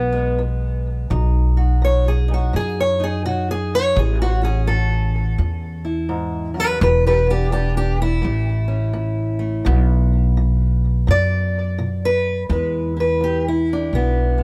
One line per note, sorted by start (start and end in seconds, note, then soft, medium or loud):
0.00 1.07 B1 medium
0.00 0.35 E2 medium
0.00 0.11 G#3 soft
0.00 0.40 B3 loud
0.12 1.08 G#3 soft
0.38 1.05 E2 medium
1.10 2.50 B1 loud
1.10 1.77 B2 medium
1.10 2.27 D#4 soft
1.57 2.07 F#4 soft
1.82 2.48 B2 medium
1.82 2.07 C#5 loud
2.08 2.31 G#4 medium
2.28 2.99 D#4 soft
2.34 2.56 F#4 medium
2.53 3.92 F#2 medium
2.53 3.20 B2 medium
2.53 2.79 G#4 loud
2.80 3.03 C#5 loud
3.00 3.94 D#4 soft
3.00 3.25 G#4 loud
3.25 3.91 B2 medium
3.25 3.49 F#4 medium
3.51 3.74 G#4 loud
3.75 3.98 C#5 loud
3.95 5.35 A1 loud
3.95 4.62 A2 medium
3.95 4.21 G#4 medium
4.22 4.44 F#4 loud
4.43 6.79 C#4 soft
4.43 4.68 G#4 medium
4.67 5.34 A2 medium
4.67 6.10 A4 loud
5.38 6.77 E2 medium
5.38 6.05 A2 medium
5.85 6.59 E4 soft
6.09 6.54 G#2 medium
6.54 6.79 F#2 medium
6.59 6.81 G4 loud
6.59 6.82 B4 loud
6.79 8.20 E1 loud
6.79 7.46 E2 medium
6.79 6.89 G4 medium
6.83 7.06 B4 medium
7.07 7.19 G4 medium
7.07 7.30 B4 medium
7.27 8.21 B3 soft
7.27 7.51 D4 medium
7.31 7.52 G4 medium
7.51 8.18 E2 medium
7.51 7.76 D4 medium
7.51 7.76 G4 loud
7.77 8.00 D4 medium
7.77 8.00 G4 loud
8.02 9.67 E4 loud
8.22 9.62 A1 medium
8.22 8.89 A2 medium
8.22 9.38 A3 medium
8.68 9.62 C#4 soft
8.93 9.60 A2 medium
9.39 9.62 A3 soft
9.65 11.04 B1 loud
9.65 10.31 B2 medium
9.65 12.47 B3 medium
10.37 11.03 B2 medium
11.07 12.47 F#2 medium
11.07 11.74 B2 medium
11.07 12.04 D5 loud
11.78 12.45 B2 medium
12.05 12.43 B4 loud
12.49 13.16 E2 medium
12.49 13.89 E2 loud
12.49 14.38 G#3 soft
12.49 12.96 E4 soft
12.49 13.00 B4 soft
12.97 13.48 E4 soft
12.97 13.47 B4 medium
13.21 13.87 E2 medium
13.21 13.46 G4 medium
13.48 14.42 E4 medium
13.73 14.43 D4 medium
13.93 14.43 B1 medium
13.93 14.43 E2 medium
13.93 14.43 B3 medium
14.38 14.43 G#3 soft